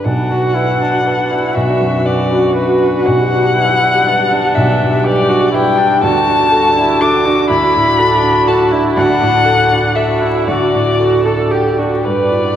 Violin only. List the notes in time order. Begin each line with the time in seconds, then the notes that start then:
0.04 F#5
1.55 E5
2.05 D5
2.56 B4
3.06 F#5
4.55 E5
5.05 D5
5.55 G5
6.04 A5
7.01 D6
7.50 B5
8.47 A5
8.96 F#5
9.95 E5
10.47 D5
11.26 A4
11.51 G4
12.05 D5